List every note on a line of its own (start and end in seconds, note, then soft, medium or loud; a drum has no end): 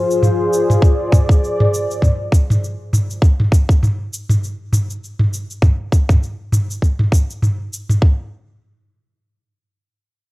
0.00 3.22 F3 medium
0.00 3.23 F4 medium
0.00 3.22 G#4 medium
0.00 3.22 C5 medium
0.11 cabasa soft
0.21 3.22 D5 medium
0.21 mid tom medium
0.21 cabasa soft
0.53 cabasa medium
0.70 mid tom medium
0.70 cabasa soft
0.82 kick loud
0.82 cabasa soft
1.12 kick medium
1.12 mid tom medium
1.12 cabasa medium
1.29 kick loud
1.29 cabasa soft
1.44 cabasa soft
1.60 mid tom medium
1.74 cabasa medium
1.91 cabasa soft
2.02 kick medium
2.02 mid tom medium
2.02 cabasa soft
2.32 kick medium
2.32 cabasa medium
2.50 mid tom medium
2.50 cabasa soft
2.64 cabasa soft
2.93 mid tom medium
2.93 cabasa medium
3.11 cabasa soft
3.22 kick loud
3.22 cabasa soft
3.40 mid tom medium
3.52 kick medium
3.52 cabasa medium
3.69 kick medium
3.69 cabasa soft
3.83 mid tom medium
3.83 cabasa soft
4.13 cabasa medium
4.30 mid tom medium
4.30 cabasa soft
4.44 cabasa soft
4.73 mid tom medium
4.73 cabasa medium
4.90 cabasa soft
5.04 cabasa soft
5.20 mid tom medium
5.34 cabasa medium
5.51 cabasa soft
5.62 kick loud
5.62 mid tom medium
5.62 cabasa soft
5.92 kick medium
5.92 cabasa medium
6.09 kick medium
6.09 mid tom medium
6.09 cabasa soft
6.23 cabasa soft
6.52 mid tom medium
6.52 cabasa medium
6.71 cabasa soft
6.82 kick medium
6.82 cabasa soft
6.99 mid tom medium
7.12 kick medium
7.12 cabasa medium
7.30 cabasa soft
7.43 mid tom medium
7.43 cabasa soft
7.73 cabasa medium
7.89 mid tom medium
7.89 cabasa soft
8.02 kick loud